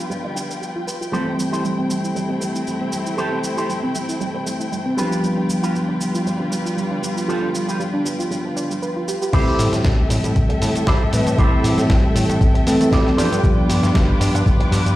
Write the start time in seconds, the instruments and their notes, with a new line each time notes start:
Already playing: tine electric piano F3 G3 B3 D4 G4, string section G3 F4 B4 G5
0.10 synth arpeggio sound G3, muted clean electric guitar stroke, cabasa
0.23 synth arpeggio sound D4, muted clean electric guitar stroke
0.35 synth arpeggio sound D4, muted clean electric guitar stroke, cabasa
0.50 synth arpeggio sound B4, cabasa
0.61 synth arpeggio sound G4, cabasa
0.76 synth arpeggio sound F4
0.87 synth arpeggio sound B4, cabasa
1.01 synth arpeggio sound F4, muted clean electric guitar stroke, cabasa
1.12 tine electric piano E3 G3 A3 C4 G4, synth arpeggio sound G3, string section A3 C4 E4, clean electric guitar G4 A4 C5, cabasa
1.27 synth arpeggio sound C4
1.39 synth arpeggio sound G3, cabasa
1.52 synth arpeggio sound E4, clean electric guitar G4 A4 C5, cabasa
1.64 synth arpeggio sound G3, cabasa
1.78 synth arpeggio sound C4, muted clean electric guitar stroke
1.90 synth arpeggio sound G3, cabasa
2.04 synth arpeggio sound E4, cabasa
2.15 synth arpeggio sound G3, muted clean electric guitar stroke, cabasa
2.29 synth arpeggio sound C4, muted clean electric guitar stroke
2.41 synth arpeggio sound G3, muted clean electric guitar stroke, cabasa
2.55 synth arpeggio sound E4, cabasa
2.67 synth arpeggio sound G3, cabasa
2.81 synth arpeggio sound C4
2.93 synth arpeggio sound G3, cabasa
3.06 synth arpeggio sound E4, muted clean electric guitar stroke, cabasa
3.17 synth arpeggio sound G3, clean electric guitar G4 A4 C5, cabasa
3.32 synth arpeggio sound C4
3.44 synth arpeggio sound G3, cabasa
3.57 synth arpeggio sound E4, clean electric guitar G4 A4 C5, cabasa
3.69 synth arpeggio sound G3, cabasa
3.83 synth arpeggio sound C4, muted clean electric guitar stroke
3.95 synth arpeggio sound G3, cabasa
4.09 synth arpeggio sound E4, cabasa
4.20 synth arpeggio sound G3, muted clean electric guitar stroke, cabasa
4.34 synth arpeggio sound C4, muted clean electric guitar stroke
4.46 synth arpeggio sound G3, muted clean electric guitar stroke, cabasa
4.60 synth arpeggio sound E4, cabasa
4.72 synth arpeggio sound G3, cabasa
4.86 synth arpeggio sound C4
4.97 tine electric piano F3 G3 B3 D4 G4, string section G3 F4 B4, synth arpeggio sound G3, clean electric guitar F4 G4 B4, cabasa
5.11 synth arpeggio sound F4, cabasa
5.23 synth arpeggio sound G3, cabasa
5.37 synth arpeggio sound D4
5.49 synth arpeggio sound G3, cabasa
5.62 clean electric guitar F4 G4 B4, synth arpeggio sound F4, cabasa
5.75 synth arpeggio sound G3, cabasa
5.88 synth arpeggio sound D4, muted clean electric guitar stroke
6.00 synth arpeggio sound G3, cabasa
6.15 synth arpeggio sound F4, cabasa
6.26 synth arpeggio sound G3, muted clean electric guitar stroke, cabasa
6.40 synth arpeggio sound D4, muted clean electric guitar stroke
6.51 synth arpeggio sound G3, muted clean electric guitar stroke, cabasa
6.65 synth arpeggio sound F4, cabasa
6.77 synth arpeggio sound G3, cabasa
6.91 synth arpeggio sound D4
7.03 synth arpeggio sound G3, cabasa
7.17 synth arpeggio sound F4, muted clean electric guitar stroke, cabasa
7.28 synth arpeggio sound G3, clean electric guitar F4 G4 A4, cabasa
7.42 synth arpeggio sound D4
7.54 synth arpeggio sound G3, cabasa
7.68 clean electric guitar F4 G4 B4, synth arpeggio sound F4, cabasa
7.80 synth arpeggio sound G3, cabasa
7.93 synth arpeggio sound D4, muted clean electric guitar stroke
8.05 synth arpeggio sound G3, cabasa
8.19 synth arpeggio sound F4, cabasa
8.31 synth arpeggio sound G3, muted clean electric guitar stroke, cabasa
8.45 synth arpeggio sound D4, muted clean electric guitar stroke
8.56 synth arpeggio sound D4, muted clean electric guitar stroke, cabasa
8.70 synth arpeggio sound G3, cabasa
8.82 synth arpeggio sound B4, cabasa
8.96 synth arpeggio sound F4
9.08 synth arpeggio sound G4, cabasa
9.21 synth arpeggio sound G4, muted clean electric guitar stroke, cabasa
9.33 analog synth bass A1, tine electric piano E3 G3 A3 C4 G4, clean electric guitar E4 G4 A4 C5, string section A4 E5 G5, kick, closed hi-hat, crash, cabasa
9.59 analog synth bass A2, open hi-hat, cabasa
9.73 analog synth bass A2, snare, closed hi-hat, cabasa
9.85 analog synth bass A1, kick, snare, closed hi-hat, cabasa
10.10 analog synth bass A2, muted clean electric guitar stroke, open hi-hat, cabasa
10.24 analog synth bass A2, muted clean electric guitar stroke, closed hi-hat, cabasa
10.35 analog synth bass A1, muted clean electric guitar stroke, kick, closed hi-hat, cabasa
10.49 muted clean electric guitar stroke, closed hi-hat
10.60 analog synth bass A2, muted clean electric guitar stroke, open hi-hat, cabasa
10.75 analog synth bass A2, closed hi-hat, cabasa
10.86 analog synth bass A1, clean electric guitar E4 G4 A4 C5, kick, snare, closed hi-hat, cabasa
11.12 analog synth bass A2, tine electric piano E3 G3 A3 C4 B4, muted clean electric guitar stroke, open hi-hat, cabasa
11.26 analog synth bass A2, muted clean electric guitar stroke, closed hi-hat, cabasa
11.38 analog synth bass A1, tine electric piano E3 G3 A3 C4 G4, clean electric guitar E4 G4 A4 C5, kick, closed hi-hat, cabasa
11.64 analog synth bass A2, open hi-hat, cabasa
11.78 analog synth bass A2, snare, closed hi-hat, cabasa
11.90 analog synth bass A1, kick, snare, closed hi-hat, cabasa
12.15 analog synth bass A2, muted clean electric guitar stroke, open hi-hat, cabasa
12.29 analog synth bass A2, muted clean electric guitar stroke, closed hi-hat, cabasa
12.40 analog synth bass A1, muted clean electric guitar stroke, kick, closed hi-hat, cabasa
12.54 muted clean electric guitar stroke, closed hi-hat
12.66 analog synth bass A2, tine electric piano E3 G3 A3 C4 A4, muted clean electric guitar stroke, open hi-hat, cabasa
12.80 analog synth bass A2, tine electric piano E3 G3 A3 C4 A4, closed hi-hat, cabasa
12.92 analog synth bass A1, clean electric guitar E4 G4 A4 D5, kick, snare, closed hi-hat, cabasa
13.07 snare
13.17 analog synth bass G2, tine electric piano F3 G3 B3 D4 A4, clean electric guitar F4 G4 B4 D5, string section F4 B4 D6, open hi-hat, cabasa
13.32 analog synth bass G2, closed hi-hat, cabasa
13.43 analog synth bass G1, tine electric piano F3 G3 B3 D4 G4, kick, closed hi-hat, cabasa
13.69 analog synth bass G2, open hi-hat, cabasa
13.83 analog synth bass G2, snare, closed hi-hat, cabasa
13.95 analog synth bass G1, kick, snare, closed hi-hat, cabasa
14.20 analog synth bass G2, muted clean electric guitar stroke, open hi-hat, cabasa
14.34 analog synth bass G2, muted clean electric guitar stroke, closed hi-hat, cabasa
14.46 analog synth bass G1, muted clean electric guitar stroke, kick, closed hi-hat, cabasa
14.60 muted clean electric guitar stroke, closed hi-hat
14.72 analog synth bass G2, muted clean electric guitar stroke, open hi-hat, cabasa
14.86 analog synth bass G2, closed hi-hat, cabasa